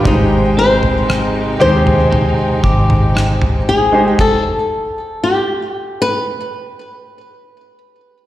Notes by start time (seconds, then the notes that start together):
Already playing: D4 F4 G4 G5
0.04 G#1 G#2 C3 G#3 D#4 G4 C5, kick, floor tom
0.57 C4 C5
0.83 floor tom
1.09 D#4, cross-stick
1.59 D#2 G#3 D#4 G4 C5, floor tom
1.87 floor tom
2.12 D#4, floor tom
2.64 G#1 G4, kick
2.90 floor tom
3.15 D#4, cross-stick
3.42 floor tom
3.69 G#4
3.92 G#3 D#4 G4 C5
4.08 G4
4.19 A4, kick, crash
5.24 G4
6.02 B4